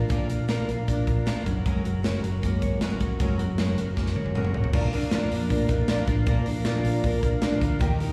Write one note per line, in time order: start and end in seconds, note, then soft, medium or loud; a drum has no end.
0.00 0.87 D4 medium
0.00 0.29 F4 medium
0.00 0.49 A#4 medium
0.09 0.27 A#1 loud
0.09 0.29 A#2 medium
0.09 0.29 F3 medium
0.09 0.29 A#3 medium
0.09 0.29 D4 medium
0.09 0.28 F4 medium
0.09 0.27 A#4 medium
0.09 kick loud
0.09 closed hi-hat medium
0.28 0.63 A#1 medium
0.28 0.48 A#3 medium
0.28 0.48 D4 medium
0.28 0.48 F4 medium
0.28 0.48 A#4 medium
0.28 closed hi-hat medium
0.48 0.68 A#2 medium
0.48 0.68 F3 medium
0.48 0.68 A#3 medium
0.48 0.68 D4 medium
0.48 0.67 F4 medium
0.48 0.66 A#4 medium
0.48 snare loud
0.48 closed hi-hat medium
0.67 0.85 A#1 medium
0.67 0.86 A#3 soft
0.67 0.87 D4 soft
0.67 0.88 F4 soft
0.67 0.87 A#4 medium
0.67 closed hi-hat medium
0.87 1.04 A#2 loud
0.87 1.26 A#3 medium
0.87 1.26 D4 medium
0.87 1.26 F4 medium
0.87 1.27 A#4 medium
0.87 kick medium
0.87 closed hi-hat medium
1.07 1.40 A#1 medium
1.07 2.03 A#4 medium
1.07 kick medium
1.07 closed hi-hat medium
1.26 1.45 A#2 medium
1.26 1.46 F3 medium
1.26 1.46 A#3 medium
1.26 1.46 D4 medium
1.26 1.36 D#4 medium
1.26 1.46 F4 medium
1.26 1.44 A#4 medium
1.26 snare loud
1.26 closed hi-hat medium
1.36 1.50 F4 medium
1.46 1.79 F#1 loud
1.46 1.65 F#3 medium
1.46 1.66 C#4 soft
1.46 1.66 F#4 medium
1.46 1.65 A#4 medium
1.46 kick medium
1.46 closed hi-hat medium
1.66 1.85 F#3 medium
1.66 1.85 G#3 medium
1.66 1.85 C#4 medium
1.66 1.85 F#4 medium
1.66 1.83 A#4 medium
1.66 kick loud
1.66 closed hi-hat medium
1.84 2.18 F#1 medium
1.84 2.03 C#4 soft
1.84 2.03 F#4 medium
1.84 2.04 A#4 medium
1.84 closed hi-hat medium
2.03 2.23 F#3 medium
2.03 2.23 G#3 medium
2.03 2.23 C#4 medium
2.03 2.23 F#4 medium
2.03 2.21 A#4 medium
2.03 2.61 C#5 medium
2.03 snare loud
2.03 closed hi-hat medium
2.23 2.40 F#1 medium
2.23 2.42 C#4 soft
2.23 2.43 F#4 medium
2.23 2.42 A#4 medium
2.23 closed hi-hat medium
2.42 2.59 F#2 loud
2.42 2.81 G#3 medium
2.42 3.96 A#3 medium
2.42 2.81 C#4 medium
2.42 2.82 F#4 medium
2.42 2.84 A#4 medium
2.42 kick medium
2.42 closed hi-hat medium
2.62 2.95 G#1 medium
2.62 2.99 C#5 medium
2.62 kick medium
2.62 closed hi-hat medium
2.81 3.01 F#3 medium
2.81 3.01 G#3 medium
2.81 3.01 C#4 medium
2.81 3.01 F#4 medium
2.81 2.99 A#4 medium
2.81 snare loud
2.81 closed hi-hat medium
3.00 3.17 F1 medium
3.00 3.20 C#4 soft
3.00 3.20 F#4 medium
3.00 3.20 A#4 medium
3.00 3.57 C#5 medium
3.00 kick medium
3.00 closed hi-hat medium
3.19 3.36 F#1 medium
3.19 3.39 F#3 medium
3.19 3.39 G#3 medium
3.19 3.39 C#4 medium
3.19 3.39 F#4 medium
3.19 3.38 A#4 medium
3.19 kick loud
3.19 closed hi-hat medium
3.39 3.56 F#1 medium
3.39 3.58 C#4 soft
3.39 3.59 F#4 medium
3.39 3.58 A#4 medium
3.39 closed hi-hat medium
3.58 3.75 F#1 medium
3.58 3.77 F#3 medium
3.58 3.78 G#3 medium
3.58 3.78 C#4 medium
3.58 3.78 F#4 medium
3.58 3.76 A#4 loud
3.58 4.15 C#5 medium
3.58 snare loud
3.58 closed hi-hat medium
3.77 3.94 F#1 medium
3.77 3.96 C#4 soft
3.77 3.97 F#4 soft
3.77 3.97 A#4 medium
3.77 closed hi-hat medium
3.96 4.13 F#2 loud
3.96 4.34 G#3 medium
3.96 4.92 A#3 medium
3.96 4.35 C#4 medium
3.96 4.35 F#4 medium
3.96 4.37 A#4 medium
3.96 kick medium
3.96 snare medium
4.06 snare medium
4.16 4.49 F#1 medium
4.16 4.52 C#5 medium
4.16 high tom medium
4.26 high tom medium
4.35 4.54 F#3 medium
4.35 4.54 G#3 medium
4.35 4.55 C#4 medium
4.35 4.54 F#4 medium
4.35 4.53 A#4 medium
4.35 mid tom medium
4.45 mid tom medium
4.54 4.71 G#1 medium
4.54 4.74 C#4 soft
4.54 4.74 F#4 medium
4.54 4.73 A#4 medium
4.54 4.74 C#5 medium
4.54 floor tom medium
4.64 floor tom medium
4.73 4.90 A#1 loud
4.73 4.92 A#2 medium
4.73 4.93 F3 medium
4.73 4.93 A#3 medium
4.73 4.93 D4 medium
4.73 4.93 F4 loud
4.73 4.91 A#4 medium
4.73 kick loud
4.73 crash loud
4.92 5.26 A#1 medium
4.92 5.12 A#3 medium
4.92 5.13 D4 soft
4.92 5.12 F4 medium
4.92 5.12 A#4 medium
4.92 hi-hat pedal medium
4.92 open hi-hat medium
5.11 5.50 A#2 medium
5.11 5.51 F3 medium
5.11 5.49 A#3 medium
5.11 5.49 D4 medium
5.11 5.51 F4 medium
5.11 5.52 A#4 loud
5.11 snare loud
5.11 clap medium
5.11 hi-hat pedal medium
5.11 open hi-hat medium
5.31 5.48 F2 medium
5.31 5.87 D4 medium
5.31 hi-hat pedal medium
5.31 open hi-hat medium
5.50 5.67 A#2 loud
5.50 5.69 A#3 medium
5.50 5.69 D4 medium
5.50 5.68 F4 medium
5.50 5.67 A#4 medium
5.50 kick medium
5.50 hi-hat pedal medium
5.50 open hi-hat loud
5.68 6.02 A#1 medium
5.68 5.88 A#3 soft
5.68 5.89 D4 soft
5.68 5.79 D#4 medium
5.68 5.89 F4 medium
5.68 5.88 A#4 medium
5.68 kick medium
5.68 clap medium
5.68 hi-hat pedal medium
5.68 open hi-hat medium
5.79 6.06 F4 soft
5.88 6.08 A#2 medium
5.88 6.08 F3 medium
5.88 6.08 A#3 medium
5.88 6.08 D4 medium
5.88 6.07 F4 loud
5.88 6.06 A#4 medium
5.88 snare loud
5.88 clap medium
5.88 hi-hat pedal medium
5.88 open hi-hat loud
6.07 6.24 A1 medium
6.07 6.26 A#3 soft
6.07 6.26 D4 medium
6.07 6.27 F4 medium
6.07 6.27 A#4 medium
6.07 kick medium
6.07 hi-hat pedal medium
6.07 open hi-hat medium
6.26 6.43 A#1 loud
6.26 6.46 A#2 medium
6.26 6.46 F3 medium
6.26 6.46 A#3 loud
6.26 6.46 D4 loud
6.26 6.45 F4 medium
6.26 6.44 A#4 loud
6.26 kick loud
6.26 hi-hat pedal medium
6.26 open hi-hat medium
6.45 6.79 A#1 loud
6.45 6.65 D4 medium
6.45 6.65 F4 medium
6.45 6.65 A#4 medium
6.45 hi-hat pedal medium
6.45 open hi-hat medium
6.64 7.03 A#2 medium
6.64 7.04 F3 medium
6.64 7.03 A#3 medium
6.64 7.03 D4 loud
6.64 7.04 F4 loud
6.64 7.06 A#4 medium
6.64 snare loud
6.64 clap loud
6.64 hi-hat pedal medium
6.64 open hi-hat medium
6.84 7.01 A#1 loud
6.84 7.41 D4 medium
6.84 hi-hat pedal medium
6.84 open hi-hat medium
7.03 7.20 A#2 loud
7.03 7.23 A#3 medium
7.03 7.23 D4 medium
7.03 7.22 F4 medium
7.03 7.21 A#4 medium
7.03 kick medium
7.03 hi-hat pedal medium
7.03 open hi-hat medium
7.22 7.55 A#1 medium
7.22 7.41 A#3 soft
7.22 7.42 D4 medium
7.22 7.42 F4 medium
7.22 7.42 A#4 medium
7.22 kick medium
7.22 clap medium
7.22 hi-hat pedal medium
7.22 open hi-hat medium
7.41 7.61 A#2 medium
7.41 7.61 F3 medium
7.41 7.61 A#3 medium
7.41 7.61 D4 medium
7.41 7.60 F4 medium
7.41 7.58 A#4 medium
7.41 snare loud
7.41 clap medium
7.41 hi-hat pedal medium
7.41 open hi-hat loud
7.60 7.78 D2 medium
7.60 7.79 A#3 soft
7.60 7.81 D4 medium
7.60 7.80 F4 medium
7.60 7.80 A#4 medium
7.60 kick medium
7.60 hi-hat pedal medium
7.60 open hi-hat medium
7.79 7.97 D#2 loud
7.79 7.99 D#3 medium
7.79 8.00 A#3 medium
7.79 8.00 D#4 medium
7.79 7.99 G4 loud
7.79 7.97 A#4 loud
7.79 kick loud
7.79 hi-hat pedal medium
7.79 open hi-hat loud
7.99 8.12 D#2 medium
7.99 8.12 D#4 medium
7.99 8.12 G4 medium
7.99 8.12 A#4 medium
7.99 hi-hat pedal medium
7.99 open hi-hat medium